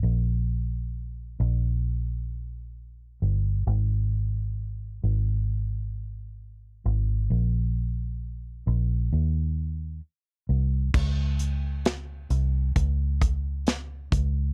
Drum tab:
CC |--------|--------|--------|x-------|
HH |--------|--------|--------|-xxxxxxx|
SD |--------|--------|--------|--o---o-|
BD |--------|--------|--------|o---oo-o|